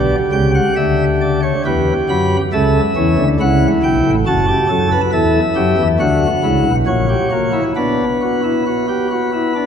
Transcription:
0.00 0.15 B1 medium
0.00 0.15 B2 medium
0.00 1.40 G4 medium
0.00 0.15 D5 medium
0.32 0.60 C#2 medium
0.32 0.60 C#3 medium
0.32 0.51 G5 medium
0.54 0.73 F#5 medium
0.76 1.53 D2 medium
0.76 1.53 D3 medium
0.76 1.04 E5 medium
1.21 1.40 D5 medium
1.43 1.62 C#5 medium
1.65 1.93 E2 medium
1.65 1.93 E3 medium
1.65 2.41 G4 medium
1.65 1.93 B4 medium
2.09 2.37 F#2 medium
2.09 2.36 F#3 medium
2.09 2.36 B5 medium
2.53 2.80 C#2 medium
2.53 2.80 C#3 medium
2.53 2.80 A4 medium
2.53 3.28 E5 medium
2.96 3.15 E2 medium
2.96 3.15 E3 medium
2.96 3.23 C#4 medium
3.18 3.37 D2 medium
3.18 3.37 D3 medium
3.40 3.67 C#2 medium
3.40 3.67 C#3 medium
3.40 4.15 E4 medium
3.40 3.67 F#5 medium
3.83 4.02 B1 medium
3.83 4.02 B2 medium
3.83 4.10 G5 medium
4.05 4.24 A1 medium
4.05 4.24 A2 medium
4.26 4.53 F#1 medium
4.26 4.53 F#2 medium
4.26 4.45 F#4 medium
4.26 5.01 A5 medium
4.48 4.67 G4 medium
4.70 4.96 F#2 medium
4.70 4.96 F#3 medium
4.70 4.88 A4 medium
4.91 5.10 B4 medium
5.13 5.40 E2 medium
5.13 5.40 E3 medium
5.13 5.40 A4 medium
5.13 5.87 E5 medium
5.56 5.75 F#2 medium
5.56 5.75 F#3 medium
5.56 5.83 G4 medium
5.78 5.97 E2 medium
5.78 5.97 E3 medium
5.99 6.27 D2 medium
5.99 6.27 D3 medium
5.99 6.27 F#4 medium
5.99 6.75 F#5 medium
6.43 6.62 C#2 medium
6.43 6.62 C#3 medium
6.43 6.71 E4 medium
6.65 6.84 B1 medium
6.65 6.84 B2 medium
6.87 7.14 A#1 medium
6.87 7.14 A#2 medium
6.87 7.06 F#4 medium
6.87 7.63 C#5 medium
7.09 7.28 G4 medium
7.31 7.59 A#3 medium
7.31 7.50 F#4 medium
7.53 7.72 E4 medium
7.76 9.66 B3 medium
7.76 8.04 D4 medium
7.76 9.66 B4 medium
8.21 8.41 F#4 soft
8.44 8.63 E4 medium
8.67 8.86 F#4 medium
8.88 9.08 G4 medium
9.11 9.30 F#4 medium
9.33 9.53 E4 medium
9.55 9.66 D4 medium

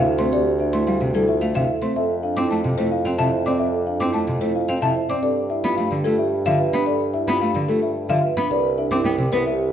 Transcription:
0.00 1.81 D2 medium
0.05 0.23 A4 medium
0.18 0.29 A3 medium
0.18 0.36 C4 medium
0.18 0.36 C5 medium
0.18 0.36 C6 medium
0.32 0.50 G4 medium
0.32 0.50 D5 medium
0.59 0.77 D4 medium
0.59 0.77 E5 medium
0.73 0.84 A3 medium
0.73 0.91 E4 medium
0.73 0.91 C6 medium
0.87 0.97 G3 medium
0.87 1.04 G4 soft
0.87 1.05 F5 soft
1.01 1.11 C3 medium
1.14 1.24 G3 medium
1.14 1.32 E4 medium
1.14 1.32 A4 medium
1.28 1.45 F4 medium
1.28 1.46 E5 medium
1.41 1.52 A3 medium
1.41 1.59 F5 soft
1.55 1.65 C3 medium
1.55 1.73 E4 medium
1.55 1.73 E5 medium
1.55 1.73 F5 medium
1.69 1.86 A4 soft
1.82 1.92 A3 soft
1.82 2.00 C4 soft
1.82 2.00 C5 soft
1.82 2.00 C6 soft
1.96 5.08 F2 medium
1.96 2.14 A4 medium
1.96 2.14 E5 medium
2.23 2.41 D4 medium
2.23 2.41 F5 medium
2.37 2.47 C4 medium
2.37 2.54 E4 medium
2.37 2.55 D6 medium
2.51 2.61 A3 medium
2.51 2.68 A5 soft
2.65 2.75 C3 medium
2.78 2.88 A3 medium
2.78 2.95 E4 medium
2.78 2.95 C5 medium
2.91 3.09 F4 medium
2.91 3.09 F5 medium
3.05 3.15 C4 medium
3.05 3.23 F5 medium
3.18 3.29 C3 medium
3.18 3.36 E4 medium
3.18 3.36 E5 medium
3.18 3.36 A5 medium
3.32 3.50 C5 medium
3.46 3.64 C4 medium
3.46 3.56 C4 medium
3.46 3.64 D5 medium
3.46 3.64 D6 medium
3.59 3.77 A4 medium
3.59 3.77 E5 medium
3.87 4.04 D4 soft
3.87 4.04 F5 soft
4.00 4.11 C4 medium
4.00 4.18 E4 medium
4.00 4.18 D6 medium
4.14 4.24 A3 medium
4.14 4.32 A5 soft
4.27 4.38 C3 medium
4.41 4.51 A3 medium
4.41 4.59 E4 medium
4.41 4.59 C5 medium
4.55 4.73 F4 soft
4.55 4.73 F5 soft
4.68 4.79 C4 medium
4.68 4.86 F5 medium
4.82 4.92 C3 medium
4.82 5.00 E4 medium
4.82 5.00 E5 medium
4.82 5.00 A5 medium
4.96 5.14 C5 medium
5.09 5.27 C4 medium
5.09 5.20 C4 medium
5.09 5.22 D5 soft
5.09 5.27 D6 medium
5.23 8.35 G2 medium
5.23 5.41 A4 medium
5.23 5.41 D5 medium
5.50 5.68 E4 medium
5.50 5.68 E5 medium
5.64 5.74 B3 medium
5.64 5.82 F4 medium
5.64 5.82 B5 medium
5.77 5.88 A3 medium
5.77 5.95 F5 soft
5.91 6.01 D3 medium
6.04 6.15 A3 medium
6.04 6.23 F4 medium
6.04 6.22 A4 medium
6.18 6.36 G4 soft
6.18 6.36 E5 medium
6.46 6.56 D3 medium
6.46 6.63 F4 medium
6.46 6.64 E5 medium
6.46 6.64 F5 medium
6.59 6.77 B4 medium
6.73 6.83 B3 medium
6.73 6.91 D4 medium
6.73 6.91 B5 medium
6.86 7.05 A4 medium
6.86 7.04 D5 medium
7.14 7.32 E4 medium
7.14 7.32 E5 medium
7.28 7.38 B3 medium
7.28 7.45 F4 medium
7.28 7.46 B5 medium
7.41 7.52 A3 medium
7.41 7.59 F5 medium
7.55 7.65 D3 medium
7.68 7.79 A3 medium
7.68 7.86 F4 medium
7.68 7.86 A4 medium
7.82 8.00 G4 soft
7.82 8.00 E5 medium
8.09 8.20 D3 medium
8.09 8.27 F4 medium
8.09 8.27 E5 medium
8.09 8.27 F5 medium
8.23 8.41 B4 medium
8.37 8.47 B3 medium
8.37 8.55 D4 soft
8.37 8.55 B5 medium
8.50 9.72 C2 medium
8.50 8.68 B4 medium
8.50 8.68 D5 medium
8.78 8.95 D4 medium
8.78 8.96 E5 medium
8.91 9.01 C4 medium
8.91 9.09 E4 medium
8.91 9.09 D6 medium
9.05 9.15 B3 medium
9.05 9.23 G5 medium
9.19 9.29 C3 medium
9.32 9.42 B3 medium
9.32 9.50 E4 medium
9.32 9.50 B4 medium
9.46 9.64 G4 medium
9.46 9.64 E5 medium

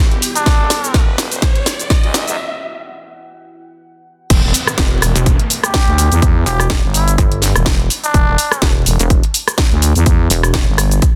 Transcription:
0.00 0.20 E1 loud
0.00 2.34 B3 medium
0.00 2.34 E4 medium
0.00 2.38 E4 medium
0.00 2.34 G4 medium
0.00 2.38 B4 medium
0.00 1.70 G5 medium
0.00 riser medium
0.12 closed hi-hat soft
0.22 open hi-hat loud
0.22 shaker medium
0.35 1.02 D4 medium
0.35 closed hi-hat soft
0.35 shaker soft
0.46 kick loud
0.46 snare medium
0.46 closed hi-hat medium
0.46 shaker soft
0.59 0.68 E1 loud
0.70 snare medium
0.70 open hi-hat loud
0.70 shaker medium
0.84 shaker soft
0.94 1.17 E1 loud
0.94 kick loud
0.94 snare medium
0.94 closed hi-hat medium
0.94 shaker soft
1.18 1.29 E1 loud
1.18 snare medium
1.18 open hi-hat loud
1.18 shaker medium
1.31 1.53 E1 medium
1.31 closed hi-hat medium
1.31 shaker soft
1.42 kick loud
1.42 snare medium
1.42 closed hi-hat medium
1.42 shaker soft
1.56 closed hi-hat medium
1.66 snare medium
1.66 open hi-hat loud
1.66 shaker medium
1.79 closed hi-hat soft
1.79 shaker soft
1.90 kick loud
1.90 snare medium
1.90 closed hi-hat medium
1.90 shaker soft
2.03 2.25 D2 medium
2.03 closed hi-hat soft
2.14 snare medium
2.14 open hi-hat loud
2.14 shaker medium
2.27 2.36 E2 medium
2.27 closed hi-hat soft
2.27 shaker soft
4.30 4.41 E1 loud
4.30 11.15 B3 medium
4.30 11.15 G4 medium
4.30 kick loud
4.30 closed hi-hat medium
4.30 crash loud
4.30 downlifter medium
4.30 shaker soft
4.43 4.52 E1 loud
4.54 open hi-hat loud
4.54 shaker medium
4.67 cross-stick medium
4.67 shaker soft
4.78 5.01 E1 medium
4.78 kick loud
4.78 snare loud
4.78 closed hi-hat medium
4.78 shaker soft
5.02 5.13 E1 medium
5.02 cross-stick medium
5.02 open hi-hat loud
5.02 shaker medium
5.15 5.37 E1 loud
5.15 closed hi-hat medium
5.15 shaker soft
5.26 kick loud
5.26 closed hi-hat medium
5.26 shaker soft
5.39 closed hi-hat medium
5.50 open hi-hat loud
5.50 shaker medium
5.64 6.30 G4 medium
5.64 cross-stick medium
5.64 closed hi-hat soft
5.64 shaker soft
5.74 kick loud
5.74 snare loud
5.74 closed hi-hat medium
5.74 shaker soft
5.87 6.09 D2 loud
5.87 closed hi-hat soft
5.98 open hi-hat loud
5.98 shaker medium
6.11 6.20 E2 medium
6.11 closed hi-hat soft
6.11 shaker soft
6.22 6.45 E2 loud
6.22 kick loud
6.22 closed hi-hat medium
6.22 shaker soft
6.46 6.81 E1 medium
6.46 6.68 G4 medium
6.46 open hi-hat loud
6.46 shaker medium
6.60 cross-stick medium
6.60 shaker soft
6.70 kick loud
6.70 snare loud
6.70 closed hi-hat medium
6.70 shaker soft
6.83 7.16 G1 medium
6.94 7.16 E4 loud
6.94 open hi-hat loud
6.94 shaker medium
7.08 closed hi-hat medium
7.08 shaker soft
7.18 7.53 G1 loud
7.18 kick loud
7.18 closed hi-hat medium
7.18 shaker soft
7.32 closed hi-hat medium
7.42 snare soft
7.42 open hi-hat loud
7.42 shaker medium
7.55 7.88 E1 loud
7.55 cross-stick medium
7.55 closed hi-hat soft
7.55 shaker soft
7.66 kick loud
7.66 snare loud
7.66 closed hi-hat medium
7.66 shaker soft
7.80 closed hi-hat soft
7.90 open hi-hat loud
7.90 shaker medium
8.04 8.70 D4 loud
8.04 closed hi-hat soft
8.04 shaker soft
8.14 8.25 E1 loud
8.14 kick loud
8.14 closed hi-hat medium
8.14 shaker soft
8.27 8.37 E1 loud
8.38 open hi-hat loud
8.38 shaker medium
8.52 cross-stick medium
8.52 shaker soft
8.62 8.85 E1 loud
8.62 kick loud
8.62 snare loud
8.62 closed hi-hat medium
8.62 shaker soft
8.86 8.97 E1 loud
8.86 open hi-hat loud
8.86 shaker medium
8.99 9.21 E1 loud
8.99 closed hi-hat medium
8.99 shaker soft
9.10 kick loud
9.10 closed hi-hat medium
9.10 shaker soft
9.23 closed hi-hat medium
9.34 open hi-hat loud
9.34 shaker medium
9.48 cross-stick medium
9.48 closed hi-hat soft
9.48 shaker soft
9.58 kick loud
9.58 snare loud
9.58 closed hi-hat medium
9.58 shaker soft
9.71 9.93 D2 loud
9.71 closed hi-hat soft
9.82 open hi-hat loud
9.82 shaker medium
9.95 10.04 E2 loud
9.95 closed hi-hat soft
9.95 shaker soft
10.06 10.29 E2 loud
10.06 kick loud
10.06 closed hi-hat medium
10.06 shaker soft
10.30 10.65 E1 medium
10.30 open hi-hat loud
10.30 shaker medium
10.43 cross-stick medium
10.43 shaker soft
10.54 kick loud
10.54 snare loud
10.54 closed hi-hat medium
10.54 shaker soft
10.67 11.00 G1 medium
10.78 cross-stick medium
10.78 open hi-hat loud
10.78 shaker medium
10.91 closed hi-hat soft
10.91 shaker soft
11.02 kick loud
11.02 closed hi-hat medium
11.02 shaker soft

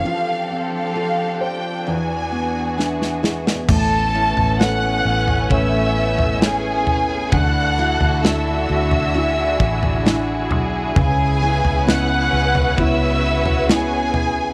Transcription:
0.00 0.14 G#3 medium
0.00 0.15 B3 soft
0.00 0.14 C#4 soft
0.00 0.71 F5 medium
0.05 1.83 F3 medium
0.05 1.96 F3 medium
0.05 1.86 F3 medium
0.05 1.86 C4 medium
0.05 3.66 D4 medium
0.05 1.86 G4 medium
0.05 1.96 A4 medium
0.05 1.86 A4 medium
0.51 1.83 C4 soft
0.76 1.39 F5 medium
0.95 1.96 F4 soft
0.95 1.84 A4 soft
1.41 1.85 C5 soft
1.41 1.88 G5 medium
1.87 3.78 E2 medium
1.87 3.65 E3 soft
1.87 3.67 E3 medium
1.87 3.67 B3 medium
1.87 3.67 F#4 medium
1.87 3.67 G#4 medium
1.87 3.24 G#5 medium
2.32 3.65 B3 soft
2.32 2.77 D4 soft
2.78 4.14 B3 soft
2.78 3.78 D4 soft
2.78 3.66 D4 soft
2.78 3.23 E4 medium
2.78 snare soft
3.02 snare soft
3.23 4.15 E4 soft
3.23 3.67 G#4 soft
3.23 snare medium
3.47 snare medium
3.69 4.33 A1 loud
3.69 7.32 A2 medium
3.69 7.29 A3 medium
3.69 7.29 B3 medium
3.69 7.29 C#4 medium
3.69 4.57 A4 medium
3.69 4.57 A5 loud
3.69 kick medium
3.69 floor tom loud
3.69 crash medium
4.14 5.03 B3 medium
4.14 4.59 C#4 medium
4.14 5.51 E4 medium
4.37 5.01 A1 medium
4.37 floor tom medium
4.60 5.49 C#4 soft
4.60 5.48 A4 soft
4.60 5.48 B4 soft
4.60 5.48 C#5 soft
4.60 5.52 F#5 loud
4.60 5.52 F#6 medium
4.60 snare loud
5.05 5.48 A1 medium
5.05 5.50 B3 medium
5.28 floor tom medium
5.49 7.29 A1 medium
5.49 6.41 B3 medium
5.49 6.40 C#4 medium
5.49 6.42 E4 medium
5.49 6.38 A4 soft
5.49 6.39 B4 soft
5.49 6.39 C#5 soft
5.49 6.39 E5 medium
5.49 6.39 E6 medium
5.49 kick medium
5.49 floor tom soft
6.18 floor tom medium
6.41 7.42 B3 medium
6.41 7.41 C#4 medium
6.41 7.30 E4 soft
6.41 7.79 E4 medium
6.41 7.34 G#4 medium
6.41 7.30 B4 soft
6.41 7.30 C#5 soft
6.41 7.34 G#5 medium
6.41 snare loud
6.87 floor tom medium
7.32 7.97 D2 loud
7.32 10.92 D3 medium
7.32 10.96 D3 medium
7.32 10.93 D3 medium
7.32 10.93 D4 medium
7.32 14.53 E4 medium
7.32 10.93 F#4 medium
7.32 9.13 A4 medium
7.32 8.24 F#5 loud
7.32 8.24 F#6 medium
7.32 kick loud
7.32 floor tom medium
7.78 8.23 D4 medium
7.78 9.15 E4 medium
7.78 8.68 F#4 medium
8.01 8.65 D2 loud
8.01 floor tom medium
8.23 9.11 D4 medium
8.23 9.13 D4 medium
8.23 9.12 E4 soft
8.23 9.12 F#4 medium
8.23 10.52 E5 medium
8.23 10.52 E6 medium
8.23 snare loud
8.69 9.56 D2 medium
8.69 9.14 F#4 medium
8.91 floor tom medium
9.14 10.04 D4 medium
9.14 10.03 D4 soft
9.14 10.03 E4 soft
9.14 10.06 E4 medium
9.14 10.05 F#4 medium
9.14 10.03 F#4 medium
9.14 12.75 G#4 medium
9.60 10.51 A1 medium
9.60 kick medium
9.83 floor tom medium
10.05 10.94 D4 soft
10.05 11.05 D4 medium
10.05 10.94 E4 soft
10.05 11.42 E4 medium
10.05 11.06 F#4 medium
10.05 10.94 F#4 medium
10.05 snare loud
10.51 10.93 B1 medium
10.51 floor tom medium
10.96 11.60 C#2 loud
10.96 14.53 C#3 medium
10.96 14.53 C#4 medium
10.96 11.84 G#4 medium
10.96 14.53 B4 medium
10.96 11.84 G#5 loud
10.96 kick loud
10.96 floor tom loud
11.41 12.31 B3 medium
11.41 11.86 C#4 medium
11.41 12.78 E4 medium
11.65 12.29 C#2 medium
11.65 floor tom medium
11.87 12.75 B3 soft
11.87 12.77 C#4 medium
11.87 12.75 C#4 soft
11.87 12.76 E4 medium
11.87 12.79 F#5 medium
11.87 12.79 F#6 medium
11.87 snare loud
12.32 12.75 C#2 medium
12.32 12.77 B3 medium
12.55 floor tom medium
12.77 14.53 C#2 loud
12.77 13.66 B3 soft
12.77 13.68 B3 medium
12.77 13.68 C#4 medium
12.77 13.66 C#4 soft
12.77 13.66 E4 medium
12.77 13.69 E4 medium
12.77 14.53 F#4 medium
12.77 13.67 E5 medium
12.77 13.66 E6 medium
12.77 kick medium
12.77 floor tom soft
13.46 floor tom medium
13.69 14.53 B3 soft
13.69 14.53 B3 medium
13.69 14.53 C#4 medium
13.69 14.53 C#4 soft
13.69 14.53 E4 medium
13.69 14.53 G#4 medium
13.69 14.53 G#5 medium
13.69 snare loud
14.14 floor tom medium

